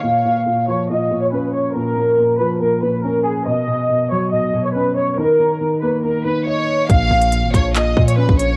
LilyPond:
<<
  \new Staff \with { instrumentName = "Violin section" } { \time 4/4 \key bes \phrygian \tempo 4 = 140 f''4. des''8 ees''8. des''16 ces''8 des''8 | bes'4. ces''8 bes'8 ces''8 bes'8 aes'8 | dis''4. cis''8 dis''8. cis''16 b'8 cis''8 | bes'4. ces''8 bes'8 ces''8 des''4 |
f''4. des''8 ees''8. des''16 ces''8 des''8 | }
  \new Staff \with { instrumentName = "Felt piano" } { \clef bass \time 4/4 \key bes \phrygian bes,8 bes,8 bes,8 f8 bes,8 bes,8 des'4 | bes,8 bes,8 bes,8 f8 bes,8 bes,8 des'4 | b,8 b,8 b,8 fis8 b,8 b,8 cis'4 | ees8 ees8 ees8 bes8 ees8 ees8 ees''4 |
bes,8 bes,8 bes,8 f8 bes,8 bes,8 des'4 | }
  \new Staff \with { instrumentName = "808-style bass" } { \clef bass \time 4/4 \key bes \phrygian r1 | r1 | r1 | r1 |
bes,,8 bes,,8. aes,,16 bes,,4 bes,8. bes,,8. | }
  \new DrumStaff \with { instrumentName = "Drums" } \drummode { \time 4/4 r4 r4 r4 r4 | r4 r4 r4 r4 | r4 r4 r4 r4 | r4 r4 r4 r4 |
<hh bd>8. hh16 hh8 <hh bd>8 <hc hh>8 bd16 hh16 r16 bd16 hh8 | }
>>